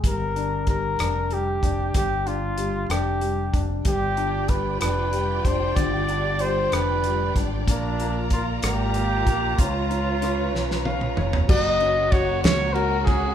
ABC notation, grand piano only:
X:1
M:6/8
L:1/8
Q:3/8=63
K:Bbmix
V:1 name="Grand piano"
G, D G, D G, D | G, D G, D G, D | G, D G, D G, D | D, D G, D G, D |
B, B, B, B, B, B, | _D D D D [Df] [D_d] | [K:F#] F, C F C F C |]